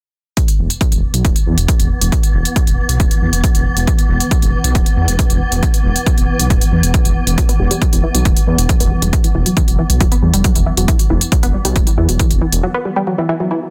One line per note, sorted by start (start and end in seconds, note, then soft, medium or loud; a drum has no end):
0.37 12.63 E3 medium
0.37 12.63 B3 medium
0.37 kick loud
0.37 closed hi-hat medium
0.48 closed hi-hat medium
0.59 0.68 E1 loud
0.70 closed hi-hat medium
0.81 kick loud
0.81 closed hi-hat medium
0.92 1.01 E1 medium
0.92 closed hi-hat medium
1.14 1.23 B1 medium
1.14 closed hi-hat medium
1.25 1.34 D1 medium
1.25 kick loud
1.25 closed hi-hat medium
1.36 closed hi-hat medium
1.46 1.56 E2 medium
1.58 1.67 E1 medium
1.58 closed hi-hat medium
1.68 kick loud
1.68 closed hi-hat medium
1.80 1.88 E1 loud
1.80 closed hi-hat medium
2.02 2.10 E1 medium
2.02 closed hi-hat medium
2.12 kick loud
2.12 closed hi-hat medium
2.23 closed hi-hat medium
2.34 2.43 E1 loud
2.45 closed hi-hat medium
2.56 kick loud
2.56 closed hi-hat medium
2.67 2.76 E1 medium
2.67 closed hi-hat medium
2.89 2.98 B1 medium
2.89 closed hi-hat medium
3.00 3.09 D1 medium
3.00 kick loud
3.00 closed hi-hat medium
3.11 closed hi-hat medium
3.22 3.31 E2 medium
3.33 3.42 E1 medium
3.33 closed hi-hat medium
3.44 kick loud
3.44 closed hi-hat medium
3.55 3.64 E1 medium
3.55 closed hi-hat medium
3.77 3.86 E1 medium
3.77 closed hi-hat medium
3.87 kick loud
3.87 closed hi-hat medium
3.99 closed hi-hat medium
4.09 4.18 E1 loud
4.20 closed hi-hat medium
4.31 kick loud
4.31 closed hi-hat medium
4.42 4.51 E1 medium
4.42 closed hi-hat medium
4.64 4.73 B1 medium
4.64 closed hi-hat medium
4.75 4.84 D1 medium
4.75 kick loud
4.75 closed hi-hat medium
4.86 closed hi-hat medium
4.97 5.06 E2 medium
5.08 5.17 E1 medium
5.08 closed hi-hat medium
5.19 kick loud
5.19 closed hi-hat medium
5.30 5.39 E1 medium
5.30 closed hi-hat medium
5.52 5.61 E1 medium
5.52 closed hi-hat medium
5.63 kick loud
5.63 closed hi-hat medium
5.74 closed hi-hat medium
5.84 5.94 E1 loud
5.96 closed hi-hat medium
6.06 kick loud
6.06 closed hi-hat medium
6.18 6.26 E1 medium
6.18 closed hi-hat medium
6.39 6.48 B1 medium
6.39 closed hi-hat medium
6.50 6.59 D1 medium
6.50 kick loud
6.50 closed hi-hat medium
6.61 closed hi-hat medium
6.72 6.81 E2 medium
6.83 6.92 E1 medium
6.83 closed hi-hat medium
6.94 kick loud
6.94 closed hi-hat medium
7.05 7.14 E1 medium
7.05 closed hi-hat medium
7.27 7.36 E1 medium
7.27 closed hi-hat medium
7.38 7.41 F#3 loud
7.38 kick loud
7.38 closed hi-hat medium
7.49 7.52 B3 loud
7.49 closed hi-hat medium
7.59 7.69 E1 loud
7.59 7.63 G3 medium
7.71 7.76 G3 loud
7.71 closed hi-hat medium
7.82 7.87 F#3 medium
7.82 kick loud
7.82 closed hi-hat medium
7.93 8.02 E1 medium
7.93 8.01 E3 medium
7.93 closed hi-hat medium
8.04 8.09 E3 loud
8.14 8.23 B1 medium
8.14 8.23 F#3 medium
8.14 closed hi-hat medium
8.25 8.35 D1 medium
8.25 8.34 E3 medium
8.25 kick loud
8.25 closed hi-hat medium
8.37 closed hi-hat medium
8.47 8.56 E2 medium
8.47 8.51 E3 loud
8.58 8.67 E1 medium
8.58 closed hi-hat medium
8.69 8.73 F#3 loud
8.69 kick loud
8.69 closed hi-hat medium
8.80 8.89 E1 loud
8.80 8.84 B3 loud
8.80 closed hi-hat medium
8.91 8.95 G3 medium
9.02 9.11 E1 medium
9.02 9.08 G3 loud
9.02 closed hi-hat medium
9.13 9.19 F#3 medium
9.13 kick loud
9.13 closed hi-hat medium
9.24 9.32 E3 medium
9.24 closed hi-hat medium
9.35 9.44 E1 loud
9.35 9.41 E3 loud
9.46 9.54 F#3 medium
9.46 closed hi-hat medium
9.57 9.65 E3 medium
9.57 kick loud
9.57 closed hi-hat medium
9.68 9.77 E1 medium
9.68 closed hi-hat medium
9.79 9.82 E3 loud
9.90 9.99 B1 medium
9.90 closed hi-hat medium
10.01 10.10 D1 medium
10.01 10.04 F#3 loud
10.01 kick loud
10.01 closed hi-hat medium
10.12 10.15 B3 medium
10.12 closed hi-hat medium
10.22 10.32 E2 medium
10.22 10.26 G3 medium
10.34 10.42 E1 medium
10.34 10.39 G3 loud
10.34 closed hi-hat medium
10.44 10.50 F#3 medium
10.44 kick loud
10.44 closed hi-hat medium
10.55 10.64 E1 medium
10.55 10.64 E3 medium
10.55 closed hi-hat medium
10.66 10.72 E3 loud
10.77 10.86 E1 medium
10.77 10.86 F#3 medium
10.77 closed hi-hat medium
10.88 10.97 E3 medium
10.88 kick loud
10.88 closed hi-hat medium
10.99 closed hi-hat medium
11.10 11.19 E1 loud
11.10 11.14 E3 loud
11.21 closed hi-hat medium
11.32 11.35 F#3 loud
11.32 kick loud
11.32 closed hi-hat medium
11.43 11.52 E1 medium
11.43 11.46 B3 loud
11.43 closed hi-hat medium
11.54 11.57 G3 medium
11.65 11.74 B1 medium
11.65 11.71 G3 loud
11.65 closed hi-hat medium
11.76 11.85 D1 medium
11.76 11.82 F#3 medium
11.76 kick loud
11.76 closed hi-hat medium
11.87 11.95 E3 medium
11.87 closed hi-hat medium
11.98 12.07 E2 medium
11.98 12.03 E3 loud
12.09 12.18 E1 medium
12.09 12.17 F#3 medium
12.09 closed hi-hat medium
12.19 12.28 E3 medium
12.19 kick loud
12.19 closed hi-hat medium
12.31 12.40 E1 medium
12.31 closed hi-hat medium
12.41 12.45 E3 loud
12.52 12.61 E1 medium
12.52 closed hi-hat medium
12.63 12.67 F#3 loud
12.74 12.78 B3 loud
12.85 12.89 G3 medium
12.96 13.02 G3 loud
13.07 13.13 F#3 medium
13.18 13.27 E3 medium
13.29 13.35 E3 loud
13.40 13.49 F#3 medium
13.51 13.60 E3 medium